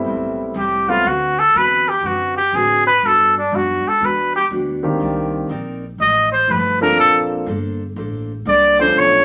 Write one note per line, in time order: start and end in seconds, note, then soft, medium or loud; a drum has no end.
0.00 0.52 G3 medium
0.00 0.52 A3 medium
0.00 0.52 B3 medium
0.00 0.52 C4 medium
0.00 0.52 E4 medium
0.04 0.53 B1 medium
0.04 0.40 A2 medium
0.04 0.40 G3 soft
0.04 0.41 C4 medium
0.04 0.41 E4 medium
0.54 1.03 C2 medium
0.54 0.90 A2 medium
0.54 0.90 G3 medium
0.54 0.90 C4 medium
0.54 0.91 E4 medium
0.54 0.91 G4 medium
0.89 1.03 F#3 medium
0.89 1.03 A3 medium
0.89 1.04 B3 medium
0.89 1.04 C4 medium
0.89 1.09 F4 medium
0.89 1.04 F#4 medium
1.04 1.52 D2 medium
1.04 1.39 D3 soft
1.04 1.40 C4 soft
1.04 1.40 F#4 soft
1.04 1.41 F#4 medium
1.04 1.40 B4 medium
1.39 1.59 A4 loud
1.54 2.02 E2 medium
1.54 1.89 D3 medium
1.54 1.89 C4 medium
1.54 1.89 F#4 medium
1.54 1.89 B4 medium
1.54 1.90 B4 loud
1.89 2.08 G4 medium
2.03 2.51 F#2 medium
2.03 2.38 D3 soft
2.03 2.38 C4 soft
2.03 2.39 F#4 medium
2.03 2.36 F#4 medium
2.03 2.39 B4 medium
2.37 2.57 G4 medium
2.52 3.00 A2 medium
2.52 2.88 D3 medium
2.52 2.88 C4 medium
2.52 2.88 F#4 medium
2.52 2.86 G#4 medium
2.52 2.88 B4 medium
2.87 3.08 B4 loud
3.02 3.50 G2 medium
3.02 3.37 G3 medium
3.02 3.37 B3 soft
3.02 3.37 D4 soft
3.02 3.38 F#4 medium
3.06 3.37 A4 medium
3.38 3.57 D4 medium
3.52 3.82 F#2 medium
3.52 3.86 G3 medium
3.52 3.86 B3 medium
3.52 3.87 D4 medium
3.52 3.87 F#4 medium
3.52 3.89 F#4 medium
3.85 4.06 A4 medium
3.85 muted upright bass stroke soft
4.01 4.49 E2 medium
4.01 4.36 G3 soft
4.01 4.36 B3 soft
4.01 4.36 D4 soft
4.01 4.37 F#4 soft
4.05 4.35 B4 medium
4.36 4.45 G4 medium
4.50 4.98 D2 medium
4.50 4.85 G3 medium
4.50 4.85 B3 medium
4.50 4.85 D4 medium
4.50 4.86 F#4 medium
4.83 5.46 D#3 medium
4.83 5.46 A#3 medium
4.83 5.46 C4 medium
4.83 5.46 D4 medium
4.83 5.46 G4 medium
5.00 5.48 C2 medium
5.00 5.34 C4 medium
5.00 5.35 D#4 medium
5.00 5.35 A#4 medium
5.00 5.35 D5 medium
5.49 5.97 A#1 medium
5.49 5.84 C4 medium
5.49 5.84 D#4 medium
5.49 5.84 A#4 medium
5.49 5.84 D5 medium
5.98 6.46 A1 medium
5.98 6.33 F3 soft
5.98 6.34 A3 soft
5.98 6.34 D#4 soft
5.98 6.34 G4 soft
5.98 6.30 D#5 medium
6.32 6.53 C5 medium
6.48 6.96 G1 medium
6.48 6.83 F3 medium
6.48 6.83 A3 medium
6.48 6.83 D#4 medium
6.48 6.83 G4 medium
6.48 6.82 B4 medium
6.81 7.43 F3 medium
6.81 7.44 A#3 medium
6.81 7.44 C4 medium
6.81 7.44 D4 medium
6.81 7.44 A4 medium
6.81 6.97 A#4 medium
6.97 7.45 A#1 medium
6.97 7.32 A#3 soft
6.97 7.32 D4 soft
6.97 7.32 A4 soft
6.97 7.19 A4 medium
6.97 7.33 C5 medium
7.46 7.95 G1 medium
7.46 7.81 A#3 medium
7.46 7.82 D4 medium
7.46 7.82 A4 medium
7.46 7.82 C5 medium
7.96 8.44 A1 medium
7.96 8.31 A#3 soft
7.96 8.31 D4 soft
7.96 8.31 A4 soft
7.96 8.32 C5 medium
8.45 8.93 C2 medium
8.45 8.80 A#3 medium
8.45 8.81 D4 medium
8.45 8.81 A4 medium
8.45 8.81 C5 medium
8.45 8.77 D5 medium
8.79 9.25 F3 medium
8.79 9.25 B3 medium
8.79 9.25 C#4 medium
8.79 9.25 D4 medium
8.79 9.25 A4 medium
8.79 9.00 C5 loud
8.94 9.25 B1 medium
8.94 9.25 B2 soft
8.94 9.25 A3 medium
8.94 9.25 D4 soft
8.94 9.25 F4 medium
8.99 9.25 C#5 loud